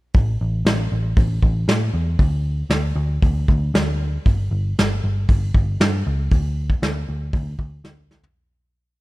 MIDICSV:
0, 0, Header, 1, 3, 480
1, 0, Start_track
1, 0, Tempo, 513259
1, 126, Time_signature, 4, 2, 24, 8
1, 8424, End_track
2, 0, Start_track
2, 0, Title_t, "Picked electric bass"
2, 0, Program_c, 0, 34
2, 140, Note_on_c, 0, 33, 80
2, 334, Note_off_c, 0, 33, 0
2, 385, Note_on_c, 0, 33, 75
2, 577, Note_off_c, 0, 33, 0
2, 609, Note_on_c, 0, 33, 78
2, 808, Note_off_c, 0, 33, 0
2, 859, Note_on_c, 0, 33, 84
2, 1054, Note_off_c, 0, 33, 0
2, 1097, Note_on_c, 0, 33, 88
2, 1293, Note_off_c, 0, 33, 0
2, 1335, Note_on_c, 0, 33, 87
2, 1532, Note_off_c, 0, 33, 0
2, 1569, Note_on_c, 0, 45, 87
2, 1769, Note_off_c, 0, 45, 0
2, 1809, Note_on_c, 0, 40, 78
2, 2009, Note_off_c, 0, 40, 0
2, 2050, Note_on_c, 0, 38, 88
2, 2451, Note_off_c, 0, 38, 0
2, 2523, Note_on_c, 0, 38, 85
2, 2726, Note_off_c, 0, 38, 0
2, 2764, Note_on_c, 0, 38, 83
2, 2968, Note_off_c, 0, 38, 0
2, 3017, Note_on_c, 0, 38, 84
2, 3215, Note_off_c, 0, 38, 0
2, 3260, Note_on_c, 0, 38, 94
2, 3457, Note_off_c, 0, 38, 0
2, 3499, Note_on_c, 0, 38, 86
2, 3897, Note_off_c, 0, 38, 0
2, 3984, Note_on_c, 0, 31, 91
2, 4180, Note_off_c, 0, 31, 0
2, 4220, Note_on_c, 0, 31, 87
2, 4418, Note_off_c, 0, 31, 0
2, 4475, Note_on_c, 0, 31, 82
2, 4667, Note_off_c, 0, 31, 0
2, 4711, Note_on_c, 0, 31, 80
2, 4905, Note_off_c, 0, 31, 0
2, 4946, Note_on_c, 0, 31, 79
2, 5142, Note_off_c, 0, 31, 0
2, 5186, Note_on_c, 0, 31, 83
2, 5382, Note_off_c, 0, 31, 0
2, 5428, Note_on_c, 0, 43, 87
2, 5622, Note_off_c, 0, 43, 0
2, 5673, Note_on_c, 0, 37, 90
2, 5866, Note_off_c, 0, 37, 0
2, 5906, Note_on_c, 0, 38, 79
2, 6300, Note_off_c, 0, 38, 0
2, 6381, Note_on_c, 0, 38, 87
2, 6578, Note_off_c, 0, 38, 0
2, 6627, Note_on_c, 0, 38, 82
2, 6821, Note_off_c, 0, 38, 0
2, 6861, Note_on_c, 0, 38, 86
2, 7057, Note_off_c, 0, 38, 0
2, 7098, Note_on_c, 0, 38, 93
2, 7294, Note_off_c, 0, 38, 0
2, 7333, Note_on_c, 0, 38, 86
2, 7730, Note_off_c, 0, 38, 0
2, 8424, End_track
3, 0, Start_track
3, 0, Title_t, "Drums"
3, 128, Note_on_c, 9, 46, 51
3, 137, Note_on_c, 9, 36, 107
3, 222, Note_off_c, 9, 46, 0
3, 231, Note_off_c, 9, 36, 0
3, 617, Note_on_c, 9, 46, 55
3, 622, Note_on_c, 9, 38, 109
3, 710, Note_off_c, 9, 46, 0
3, 715, Note_off_c, 9, 38, 0
3, 1093, Note_on_c, 9, 36, 115
3, 1099, Note_on_c, 9, 46, 56
3, 1186, Note_off_c, 9, 36, 0
3, 1193, Note_off_c, 9, 46, 0
3, 1333, Note_on_c, 9, 36, 79
3, 1426, Note_off_c, 9, 36, 0
3, 1573, Note_on_c, 9, 46, 53
3, 1577, Note_on_c, 9, 38, 104
3, 1666, Note_off_c, 9, 46, 0
3, 1671, Note_off_c, 9, 38, 0
3, 2045, Note_on_c, 9, 46, 55
3, 2050, Note_on_c, 9, 36, 94
3, 2139, Note_off_c, 9, 46, 0
3, 2143, Note_off_c, 9, 36, 0
3, 2525, Note_on_c, 9, 46, 57
3, 2529, Note_on_c, 9, 38, 104
3, 2618, Note_off_c, 9, 46, 0
3, 2623, Note_off_c, 9, 38, 0
3, 3014, Note_on_c, 9, 46, 51
3, 3016, Note_on_c, 9, 36, 105
3, 3107, Note_off_c, 9, 46, 0
3, 3109, Note_off_c, 9, 36, 0
3, 3258, Note_on_c, 9, 36, 85
3, 3351, Note_off_c, 9, 36, 0
3, 3503, Note_on_c, 9, 46, 56
3, 3507, Note_on_c, 9, 38, 107
3, 3596, Note_off_c, 9, 46, 0
3, 3601, Note_off_c, 9, 38, 0
3, 3981, Note_on_c, 9, 46, 51
3, 3983, Note_on_c, 9, 36, 102
3, 4075, Note_off_c, 9, 46, 0
3, 4076, Note_off_c, 9, 36, 0
3, 4473, Note_on_c, 9, 46, 54
3, 4478, Note_on_c, 9, 38, 105
3, 4567, Note_off_c, 9, 46, 0
3, 4571, Note_off_c, 9, 38, 0
3, 4942, Note_on_c, 9, 46, 58
3, 4946, Note_on_c, 9, 36, 108
3, 5035, Note_off_c, 9, 46, 0
3, 5040, Note_off_c, 9, 36, 0
3, 5185, Note_on_c, 9, 36, 81
3, 5279, Note_off_c, 9, 36, 0
3, 5427, Note_on_c, 9, 46, 53
3, 5432, Note_on_c, 9, 38, 113
3, 5521, Note_off_c, 9, 46, 0
3, 5526, Note_off_c, 9, 38, 0
3, 5900, Note_on_c, 9, 46, 57
3, 5906, Note_on_c, 9, 36, 98
3, 5994, Note_off_c, 9, 46, 0
3, 5999, Note_off_c, 9, 36, 0
3, 6263, Note_on_c, 9, 36, 73
3, 6356, Note_off_c, 9, 36, 0
3, 6382, Note_on_c, 9, 46, 50
3, 6386, Note_on_c, 9, 38, 103
3, 6475, Note_off_c, 9, 46, 0
3, 6480, Note_off_c, 9, 38, 0
3, 6854, Note_on_c, 9, 46, 53
3, 6858, Note_on_c, 9, 36, 116
3, 6947, Note_off_c, 9, 46, 0
3, 6951, Note_off_c, 9, 36, 0
3, 7096, Note_on_c, 9, 36, 79
3, 7189, Note_off_c, 9, 36, 0
3, 7338, Note_on_c, 9, 38, 113
3, 7431, Note_off_c, 9, 38, 0
3, 7583, Note_on_c, 9, 38, 59
3, 7677, Note_off_c, 9, 38, 0
3, 7700, Note_on_c, 9, 43, 80
3, 7794, Note_off_c, 9, 43, 0
3, 8424, End_track
0, 0, End_of_file